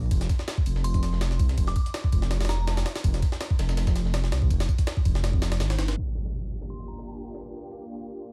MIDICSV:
0, 0, Header, 1, 6, 480
1, 0, Start_track
1, 0, Key_signature, -2, "minor"
1, 0, Tempo, 365854
1, 151, Time_signature, 4, 2, 24, 8
1, 10922, End_track
2, 0, Start_track
2, 0, Title_t, "Synth bell"
2, 0, Program_c, 0, 98
2, 1105, Note_on_c, 0, 84, 88
2, 1326, Note_off_c, 0, 84, 0
2, 2200, Note_on_c, 0, 86, 88
2, 2271, Note_off_c, 0, 86, 0
2, 2312, Note_on_c, 0, 86, 72
2, 2393, Note_off_c, 0, 86, 0
2, 3267, Note_on_c, 0, 82, 88
2, 3749, Note_off_c, 0, 82, 0
2, 8790, Note_on_c, 0, 84, 85
2, 9008, Note_off_c, 0, 84, 0
2, 9026, Note_on_c, 0, 82, 88
2, 9509, Note_off_c, 0, 82, 0
2, 10922, End_track
3, 0, Start_track
3, 0, Title_t, "String machine"
3, 0, Program_c, 1, 50
3, 7837, Note_on_c, 1, 58, 85
3, 7837, Note_on_c, 1, 62, 79
3, 7838, Note_on_c, 1, 67, 95
3, 7840, Note_on_c, 1, 65, 78
3, 10922, Note_off_c, 1, 58, 0
3, 10922, Note_off_c, 1, 62, 0
3, 10922, Note_off_c, 1, 65, 0
3, 10922, Note_off_c, 1, 67, 0
3, 10922, End_track
4, 0, Start_track
4, 0, Title_t, "Detuned saw bass"
4, 0, Program_c, 2, 39
4, 147, Note_on_c, 2, 29, 99
4, 367, Note_off_c, 2, 29, 0
4, 868, Note_on_c, 2, 29, 86
4, 1812, Note_off_c, 2, 29, 0
4, 1830, Note_on_c, 2, 36, 83
4, 2048, Note_off_c, 2, 36, 0
4, 2069, Note_on_c, 2, 29, 101
4, 2288, Note_off_c, 2, 29, 0
4, 2788, Note_on_c, 2, 29, 87
4, 3732, Note_off_c, 2, 29, 0
4, 3991, Note_on_c, 2, 29, 99
4, 4209, Note_off_c, 2, 29, 0
4, 4711, Note_on_c, 2, 29, 87
4, 5653, Note_off_c, 2, 29, 0
4, 5671, Note_on_c, 2, 36, 85
4, 5889, Note_off_c, 2, 36, 0
4, 5910, Note_on_c, 2, 29, 99
4, 6128, Note_off_c, 2, 29, 0
4, 6630, Note_on_c, 2, 29, 89
4, 7353, Note_on_c, 2, 32, 95
4, 7373, Note_off_c, 2, 29, 0
4, 7570, Note_off_c, 2, 32, 0
4, 7593, Note_on_c, 2, 31, 83
4, 7810, Note_off_c, 2, 31, 0
4, 10922, End_track
5, 0, Start_track
5, 0, Title_t, "Impact"
5, 0, Program_c, 3, 103
5, 7831, Note_on_c, 3, 60, 69
5, 9751, Note_off_c, 3, 60, 0
5, 10922, End_track
6, 0, Start_track
6, 0, Title_t, "Drums"
6, 146, Note_on_c, 9, 51, 86
6, 147, Note_on_c, 9, 36, 105
6, 147, Note_on_c, 9, 54, 85
6, 275, Note_on_c, 9, 42, 42
6, 276, Note_on_c, 9, 38, 40
6, 277, Note_off_c, 9, 51, 0
6, 278, Note_off_c, 9, 54, 0
6, 279, Note_off_c, 9, 36, 0
6, 386, Note_on_c, 9, 51, 67
6, 388, Note_off_c, 9, 38, 0
6, 388, Note_on_c, 9, 36, 92
6, 388, Note_on_c, 9, 38, 43
6, 388, Note_on_c, 9, 54, 70
6, 407, Note_off_c, 9, 42, 0
6, 515, Note_off_c, 9, 38, 0
6, 515, Note_on_c, 9, 38, 50
6, 516, Note_off_c, 9, 38, 0
6, 516, Note_on_c, 9, 38, 39
6, 517, Note_off_c, 9, 51, 0
6, 519, Note_off_c, 9, 36, 0
6, 519, Note_off_c, 9, 54, 0
6, 626, Note_off_c, 9, 38, 0
6, 626, Note_on_c, 9, 38, 116
6, 626, Note_on_c, 9, 51, 86
6, 629, Note_off_c, 9, 38, 0
6, 629, Note_on_c, 9, 38, 110
6, 629, Note_on_c, 9, 54, 87
6, 756, Note_on_c, 9, 36, 95
6, 758, Note_off_c, 9, 51, 0
6, 760, Note_off_c, 9, 38, 0
6, 760, Note_off_c, 9, 54, 0
6, 867, Note_on_c, 9, 51, 69
6, 868, Note_on_c, 9, 54, 65
6, 887, Note_off_c, 9, 36, 0
6, 997, Note_on_c, 9, 38, 48
6, 998, Note_off_c, 9, 51, 0
6, 999, Note_off_c, 9, 54, 0
6, 1107, Note_on_c, 9, 51, 82
6, 1108, Note_on_c, 9, 54, 86
6, 1128, Note_off_c, 9, 38, 0
6, 1236, Note_on_c, 9, 36, 99
6, 1237, Note_on_c, 9, 42, 43
6, 1238, Note_off_c, 9, 51, 0
6, 1239, Note_off_c, 9, 54, 0
6, 1348, Note_on_c, 9, 38, 50
6, 1348, Note_on_c, 9, 51, 67
6, 1350, Note_on_c, 9, 54, 67
6, 1367, Note_off_c, 9, 36, 0
6, 1369, Note_off_c, 9, 42, 0
6, 1478, Note_off_c, 9, 38, 0
6, 1478, Note_on_c, 9, 38, 41
6, 1479, Note_off_c, 9, 51, 0
6, 1481, Note_off_c, 9, 54, 0
6, 1588, Note_off_c, 9, 38, 0
6, 1588, Note_on_c, 9, 38, 114
6, 1588, Note_on_c, 9, 51, 86
6, 1591, Note_off_c, 9, 38, 0
6, 1591, Note_on_c, 9, 38, 108
6, 1591, Note_on_c, 9, 54, 83
6, 1718, Note_off_c, 9, 38, 0
6, 1718, Note_on_c, 9, 38, 52
6, 1719, Note_off_c, 9, 51, 0
6, 1722, Note_off_c, 9, 54, 0
6, 1829, Note_on_c, 9, 36, 94
6, 1829, Note_on_c, 9, 51, 68
6, 1831, Note_on_c, 9, 54, 71
6, 1849, Note_off_c, 9, 38, 0
6, 1957, Note_off_c, 9, 51, 0
6, 1957, Note_on_c, 9, 51, 45
6, 1958, Note_on_c, 9, 38, 56
6, 1960, Note_off_c, 9, 36, 0
6, 1962, Note_off_c, 9, 54, 0
6, 2067, Note_off_c, 9, 51, 0
6, 2067, Note_on_c, 9, 51, 87
6, 2068, Note_on_c, 9, 36, 103
6, 2070, Note_on_c, 9, 54, 85
6, 2089, Note_off_c, 9, 38, 0
6, 2195, Note_on_c, 9, 38, 47
6, 2198, Note_off_c, 9, 51, 0
6, 2200, Note_off_c, 9, 36, 0
6, 2202, Note_off_c, 9, 54, 0
6, 2306, Note_on_c, 9, 51, 69
6, 2308, Note_on_c, 9, 36, 96
6, 2310, Note_on_c, 9, 54, 67
6, 2327, Note_off_c, 9, 38, 0
6, 2437, Note_off_c, 9, 51, 0
6, 2439, Note_off_c, 9, 36, 0
6, 2441, Note_off_c, 9, 54, 0
6, 2441, Note_on_c, 9, 42, 42
6, 2547, Note_on_c, 9, 38, 116
6, 2547, Note_on_c, 9, 51, 88
6, 2551, Note_off_c, 9, 38, 0
6, 2551, Note_on_c, 9, 38, 110
6, 2551, Note_on_c, 9, 54, 83
6, 2572, Note_off_c, 9, 42, 0
6, 2676, Note_on_c, 9, 36, 94
6, 2678, Note_off_c, 9, 51, 0
6, 2683, Note_off_c, 9, 38, 0
6, 2683, Note_off_c, 9, 54, 0
6, 2787, Note_on_c, 9, 51, 67
6, 2788, Note_off_c, 9, 36, 0
6, 2788, Note_on_c, 9, 36, 91
6, 2792, Note_on_c, 9, 54, 67
6, 2915, Note_on_c, 9, 38, 53
6, 2919, Note_off_c, 9, 36, 0
6, 2919, Note_off_c, 9, 51, 0
6, 2923, Note_off_c, 9, 54, 0
6, 3027, Note_off_c, 9, 38, 0
6, 3027, Note_on_c, 9, 38, 97
6, 3027, Note_on_c, 9, 51, 74
6, 3032, Note_on_c, 9, 54, 90
6, 3156, Note_off_c, 9, 38, 0
6, 3156, Note_off_c, 9, 51, 0
6, 3156, Note_on_c, 9, 38, 86
6, 3156, Note_on_c, 9, 51, 70
6, 3163, Note_off_c, 9, 54, 0
6, 3212, Note_off_c, 9, 38, 0
6, 3212, Note_off_c, 9, 51, 0
6, 3212, Note_on_c, 9, 38, 90
6, 3212, Note_on_c, 9, 51, 69
6, 3269, Note_off_c, 9, 38, 0
6, 3269, Note_off_c, 9, 51, 0
6, 3269, Note_on_c, 9, 38, 119
6, 3269, Note_on_c, 9, 51, 67
6, 3272, Note_on_c, 9, 54, 70
6, 3400, Note_off_c, 9, 38, 0
6, 3400, Note_off_c, 9, 51, 0
6, 3403, Note_off_c, 9, 54, 0
6, 3509, Note_on_c, 9, 38, 100
6, 3509, Note_on_c, 9, 51, 75
6, 3510, Note_off_c, 9, 38, 0
6, 3510, Note_on_c, 9, 38, 113
6, 3510, Note_on_c, 9, 54, 86
6, 3637, Note_off_c, 9, 38, 0
6, 3637, Note_off_c, 9, 51, 0
6, 3637, Note_on_c, 9, 38, 101
6, 3637, Note_on_c, 9, 51, 79
6, 3641, Note_off_c, 9, 54, 0
6, 3749, Note_off_c, 9, 38, 0
6, 3749, Note_off_c, 9, 51, 0
6, 3749, Note_on_c, 9, 38, 105
6, 3749, Note_on_c, 9, 51, 81
6, 3751, Note_on_c, 9, 54, 70
6, 3877, Note_off_c, 9, 38, 0
6, 3877, Note_off_c, 9, 51, 0
6, 3877, Note_on_c, 9, 38, 105
6, 3877, Note_on_c, 9, 51, 81
6, 3882, Note_off_c, 9, 54, 0
6, 3989, Note_on_c, 9, 36, 104
6, 3990, Note_off_c, 9, 51, 0
6, 3990, Note_on_c, 9, 51, 87
6, 3990, Note_on_c, 9, 54, 89
6, 4008, Note_off_c, 9, 38, 0
6, 4119, Note_on_c, 9, 42, 45
6, 4120, Note_off_c, 9, 36, 0
6, 4120, Note_on_c, 9, 38, 40
6, 4121, Note_off_c, 9, 54, 0
6, 4122, Note_off_c, 9, 51, 0
6, 4229, Note_on_c, 9, 36, 97
6, 4229, Note_on_c, 9, 51, 66
6, 4231, Note_off_c, 9, 38, 0
6, 4231, Note_on_c, 9, 38, 43
6, 4231, Note_on_c, 9, 54, 66
6, 4250, Note_off_c, 9, 42, 0
6, 4357, Note_off_c, 9, 38, 0
6, 4357, Note_on_c, 9, 38, 51
6, 4360, Note_off_c, 9, 36, 0
6, 4360, Note_off_c, 9, 38, 0
6, 4360, Note_on_c, 9, 38, 39
6, 4361, Note_off_c, 9, 51, 0
6, 4362, Note_off_c, 9, 54, 0
6, 4468, Note_off_c, 9, 38, 0
6, 4468, Note_on_c, 9, 38, 111
6, 4468, Note_on_c, 9, 51, 89
6, 4471, Note_off_c, 9, 38, 0
6, 4471, Note_on_c, 9, 38, 114
6, 4471, Note_on_c, 9, 54, 88
6, 4597, Note_on_c, 9, 36, 98
6, 4599, Note_off_c, 9, 51, 0
6, 4602, Note_off_c, 9, 38, 0
6, 4602, Note_off_c, 9, 54, 0
6, 4710, Note_on_c, 9, 51, 70
6, 4712, Note_on_c, 9, 38, 104
6, 4712, Note_on_c, 9, 54, 76
6, 4728, Note_off_c, 9, 36, 0
6, 4839, Note_off_c, 9, 38, 0
6, 4839, Note_off_c, 9, 54, 0
6, 4839, Note_on_c, 9, 38, 105
6, 4839, Note_on_c, 9, 54, 81
6, 4841, Note_off_c, 9, 51, 0
6, 4949, Note_on_c, 9, 51, 81
6, 4950, Note_off_c, 9, 38, 0
6, 4950, Note_off_c, 9, 54, 0
6, 4950, Note_on_c, 9, 38, 104
6, 4950, Note_on_c, 9, 54, 81
6, 5078, Note_on_c, 9, 36, 96
6, 5079, Note_off_c, 9, 38, 0
6, 5079, Note_off_c, 9, 54, 0
6, 5079, Note_on_c, 9, 38, 104
6, 5079, Note_on_c, 9, 54, 80
6, 5080, Note_off_c, 9, 51, 0
6, 5190, Note_off_c, 9, 38, 0
6, 5190, Note_off_c, 9, 54, 0
6, 5190, Note_on_c, 9, 38, 48
6, 5190, Note_on_c, 9, 51, 70
6, 5190, Note_on_c, 9, 54, 67
6, 5209, Note_off_c, 9, 36, 0
6, 5318, Note_off_c, 9, 38, 0
6, 5318, Note_on_c, 9, 38, 41
6, 5321, Note_off_c, 9, 51, 0
6, 5321, Note_off_c, 9, 54, 0
6, 5429, Note_off_c, 9, 38, 0
6, 5429, Note_on_c, 9, 38, 114
6, 5429, Note_on_c, 9, 51, 86
6, 5431, Note_off_c, 9, 38, 0
6, 5431, Note_on_c, 9, 38, 112
6, 5431, Note_on_c, 9, 54, 87
6, 5559, Note_off_c, 9, 38, 0
6, 5559, Note_on_c, 9, 38, 53
6, 5561, Note_off_c, 9, 51, 0
6, 5562, Note_off_c, 9, 54, 0
6, 5670, Note_off_c, 9, 38, 0
6, 5670, Note_on_c, 9, 38, 100
6, 5670, Note_on_c, 9, 51, 81
6, 5798, Note_on_c, 9, 36, 87
6, 5801, Note_off_c, 9, 38, 0
6, 5801, Note_off_c, 9, 51, 0
6, 5910, Note_off_c, 9, 36, 0
6, 5910, Note_on_c, 9, 36, 85
6, 5911, Note_on_c, 9, 51, 63
6, 5911, Note_on_c, 9, 54, 86
6, 6038, Note_off_c, 9, 51, 0
6, 6038, Note_on_c, 9, 38, 101
6, 6038, Note_on_c, 9, 51, 78
6, 6041, Note_off_c, 9, 36, 0
6, 6042, Note_off_c, 9, 54, 0
6, 6150, Note_on_c, 9, 36, 84
6, 6151, Note_on_c, 9, 54, 70
6, 6170, Note_off_c, 9, 38, 0
6, 6170, Note_off_c, 9, 51, 0
6, 6276, Note_on_c, 9, 51, 60
6, 6278, Note_off_c, 9, 36, 0
6, 6278, Note_on_c, 9, 36, 84
6, 6280, Note_on_c, 9, 42, 43
6, 6282, Note_off_c, 9, 54, 0
6, 6389, Note_off_c, 9, 51, 0
6, 6389, Note_on_c, 9, 38, 116
6, 6389, Note_on_c, 9, 51, 89
6, 6389, Note_on_c, 9, 54, 84
6, 6409, Note_off_c, 9, 36, 0
6, 6411, Note_off_c, 9, 42, 0
6, 6518, Note_on_c, 9, 36, 94
6, 6521, Note_off_c, 9, 38, 0
6, 6521, Note_off_c, 9, 51, 0
6, 6521, Note_off_c, 9, 54, 0
6, 6630, Note_off_c, 9, 36, 0
6, 6630, Note_on_c, 9, 36, 96
6, 6630, Note_on_c, 9, 51, 69
6, 6631, Note_on_c, 9, 54, 64
6, 6758, Note_on_c, 9, 38, 56
6, 6761, Note_off_c, 9, 36, 0
6, 6761, Note_off_c, 9, 51, 0
6, 6762, Note_off_c, 9, 54, 0
6, 6871, Note_off_c, 9, 38, 0
6, 6871, Note_on_c, 9, 38, 97
6, 6871, Note_on_c, 9, 51, 75
6, 6871, Note_on_c, 9, 54, 89
6, 6999, Note_on_c, 9, 36, 87
6, 7002, Note_off_c, 9, 38, 0
6, 7002, Note_off_c, 9, 51, 0
6, 7003, Note_off_c, 9, 54, 0
6, 7110, Note_on_c, 9, 38, 109
6, 7110, Note_on_c, 9, 51, 81
6, 7111, Note_off_c, 9, 38, 0
6, 7111, Note_on_c, 9, 38, 103
6, 7111, Note_on_c, 9, 54, 82
6, 7130, Note_off_c, 9, 36, 0
6, 7238, Note_off_c, 9, 38, 0
6, 7238, Note_off_c, 9, 51, 0
6, 7238, Note_on_c, 9, 38, 101
6, 7238, Note_on_c, 9, 51, 77
6, 7242, Note_off_c, 9, 54, 0
6, 7349, Note_off_c, 9, 38, 0
6, 7349, Note_off_c, 9, 51, 0
6, 7349, Note_on_c, 9, 38, 104
6, 7349, Note_on_c, 9, 51, 78
6, 7352, Note_off_c, 9, 38, 0
6, 7352, Note_on_c, 9, 38, 111
6, 7352, Note_on_c, 9, 54, 90
6, 7479, Note_off_c, 9, 38, 0
6, 7479, Note_off_c, 9, 51, 0
6, 7479, Note_on_c, 9, 38, 104
6, 7479, Note_on_c, 9, 51, 80
6, 7483, Note_off_c, 9, 54, 0
6, 7591, Note_off_c, 9, 38, 0
6, 7591, Note_off_c, 9, 51, 0
6, 7591, Note_on_c, 9, 38, 106
6, 7591, Note_on_c, 9, 51, 80
6, 7718, Note_off_c, 9, 38, 0
6, 7718, Note_off_c, 9, 51, 0
6, 7718, Note_on_c, 9, 38, 110
6, 7718, Note_on_c, 9, 51, 79
6, 7831, Note_on_c, 9, 54, 83
6, 7850, Note_off_c, 9, 38, 0
6, 7850, Note_off_c, 9, 51, 0
6, 7961, Note_on_c, 9, 42, 41
6, 7963, Note_off_c, 9, 54, 0
6, 8071, Note_on_c, 9, 38, 40
6, 8092, Note_off_c, 9, 42, 0
6, 8200, Note_off_c, 9, 38, 0
6, 8200, Note_on_c, 9, 38, 37
6, 8310, Note_on_c, 9, 54, 77
6, 8331, Note_off_c, 9, 38, 0
6, 8441, Note_off_c, 9, 54, 0
6, 8551, Note_on_c, 9, 54, 62
6, 8679, Note_on_c, 9, 38, 43
6, 8682, Note_off_c, 9, 54, 0
6, 8793, Note_on_c, 9, 54, 84
6, 8810, Note_off_c, 9, 38, 0
6, 8919, Note_on_c, 9, 42, 41
6, 8924, Note_off_c, 9, 54, 0
6, 9050, Note_off_c, 9, 42, 0
6, 9162, Note_on_c, 9, 38, 38
6, 9272, Note_on_c, 9, 54, 80
6, 9293, Note_off_c, 9, 38, 0
6, 9403, Note_off_c, 9, 54, 0
6, 9511, Note_on_c, 9, 54, 66
6, 9639, Note_on_c, 9, 38, 52
6, 9642, Note_off_c, 9, 54, 0
6, 9750, Note_on_c, 9, 54, 81
6, 9770, Note_off_c, 9, 38, 0
6, 9881, Note_off_c, 9, 54, 0
6, 9991, Note_on_c, 9, 54, 61
6, 10119, Note_on_c, 9, 42, 40
6, 10122, Note_off_c, 9, 54, 0
6, 10231, Note_on_c, 9, 54, 83
6, 10250, Note_off_c, 9, 42, 0
6, 10362, Note_off_c, 9, 54, 0
6, 10471, Note_on_c, 9, 54, 62
6, 10603, Note_off_c, 9, 54, 0
6, 10711, Note_on_c, 9, 54, 85
6, 10842, Note_off_c, 9, 54, 0
6, 10922, End_track
0, 0, End_of_file